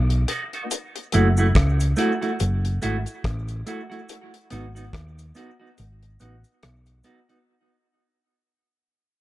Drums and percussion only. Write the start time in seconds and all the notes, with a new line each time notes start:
0.10 closed hi-hat
0.28 closed hi-hat
0.53 closed hi-hat
0.71 closed hi-hat, cabasa
0.96 closed hi-hat
1.12 closed hi-hat, cabasa
1.37 cabasa
1.55 kick, cross-stick, closed hi-hat
1.80 closed hi-hat, cabasa
1.96 closed hi-hat, cabasa
2.22 closed hi-hat
2.40 closed hi-hat, cabasa
2.65 closed hi-hat
2.82 closed hi-hat, cabasa
3.06 closed hi-hat, cabasa
3.24 kick, cross-stick, closed hi-hat
3.48 closed hi-hat, cabasa
3.67 closed hi-hat, cabasa
3.92 closed hi-hat
4.09 closed hi-hat, cabasa
4.34 closed hi-hat
4.50 closed hi-hat, cabasa
4.76 closed hi-hat, cabasa
4.93 kick, cross-stick, closed hi-hat
5.19 closed hi-hat, cabasa
5.35 closed hi-hat, cabasa
5.78 closed hi-hat, cabasa
6.03 closed hi-hat
6.20 closed hi-hat, cabasa
6.44 closed hi-hat, cabasa
6.63 cross-stick, closed hi-hat
6.86 closed hi-hat, cabasa
7.03 closed hi-hat, cabasa
7.29 closed hi-hat